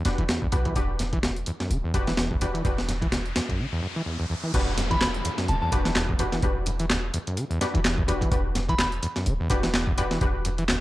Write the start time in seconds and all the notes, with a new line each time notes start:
0.05 E1 F#2 D4 F#4 G4 B4, snare, closed hi-hat
0.18 E1 E3, closed hi-hat
0.29 E2, snare, closed hi-hat
0.42 E2, kick
0.52 B1 E2 D4 F#4 G4 B4, closed hi-hat
0.65 E3, kick, closed hi-hat
0.76 E1 E2 D4 F#4 G4 B4, kick, closed hi-hat, riser
0.99 F#2, snare, closed hi-hat
1.13 E3, kick, closed hi-hat
1.23 D2, snare, closed hi-hat
1.37 closed hi-hat
1.46 E2, closed hi-hat
1.60 F#2, snare, closed hi-hat
1.70 D1 D3, closed hi-hat
1.84 E2
1.94 E1 F#2 D4 F#4 G4 B4, kick, closed hi-hat
2.07 E3, snare, closed hi-hat
2.17 E2, snare, closed hi-hat
2.31 E2, kick
2.41 E2 D4 F#4 G4 B4, closed hi-hat
2.54 E3, closed hi-hat
2.65 E1 E2 D4 F#4 G4 B4, kick, closed hi-hat
2.78 snare
2.89 F#2, snare, closed hi-hat
3.02 E3, kick, closed hi-hat
3.12 D2, snare, closed hi-hat
3.26 closed hi-hat
3.36 E2, snare, closed hi-hat
3.49 F#2, kick, closed hi-hat
3.59 D3
3.73 E2
3.83 F#2
3.96 E3
4.06 E2
4.20 E2
4.30 E2
4.43 E3
4.54 E1 E2 D4 F#4 G4 B4, kick, closed hi-hat, crash, downlifter
4.78 F#2, snare, closed hi-hat
4.91 E3 B5, kick, closed hi-hat
5.01 D2 B5, snare, clap, closed hi-hat
5.14 closed hi-hat
5.25 E2, closed hi-hat
5.38 F#2, snare, closed hi-hat
5.48 D1 D3 A5, closed hi-hat
5.62 E2 A5
5.72 E1 F#2 D4 F#4 G4 B4, kick, closed hi-hat
5.85 E3, snare, closed hi-hat
5.96 E2, snare, clap, closed hi-hat
6.09 E2, kick
6.19 E2 D4 F#4 G4 B4, closed hi-hat
6.32 E3, snare, closed hi-hat
6.42 E1 E2 D4 F#4 G4 B4, kick, closed hi-hat
6.66 F#2, closed hi-hat
6.79 E3, closed hi-hat
6.90 D2, snare, clap, closed hi-hat
7.14 E2, closed hi-hat
7.27 F#2, closed hi-hat
7.37 D3, closed hi-hat
7.50 E2, closed hi-hat
7.61 F#2 D4 F#4 G4 B4, snare, closed hi-hat
7.74 E1 E3, closed hi-hat
7.85 E2, snare, clap, closed hi-hat
7.97 E2, kick
8.07 E2 D4 F#4 G4 B4, closed hi-hat
8.21 E3, kick, closed hi-hat
8.31 E1 E2 D4 F#4 G4 B4, kick, closed hi-hat
8.55 F#2, snare, closed hi-hat
8.69 E3 B5, kick, closed hi-hat
8.79 D2 B5, snare, clap, closed hi-hat
8.92 closed hi-hat
9.03 E2, closed hi-hat
9.16 F#2, snare, closed hi-hat
9.26 D1 D3, closed hi-hat
9.40 E2
9.50 E1 F#2 D4 F#4 G4 B4, kick, closed hi-hat
9.63 E3, snare, closed hi-hat
9.74 E2, snare, clap, closed hi-hat
9.87 E2, kick
9.98 E2 D4 F#4 G4 B4, closed hi-hat
10.11 E3, snare, closed hi-hat
10.21 E1 E2 D4 F#4 G4 B4, kick, closed hi-hat
10.45 F#2, closed hi-hat
10.58 E3, closed hi-hat
10.68 D2, snare, clap, closed hi-hat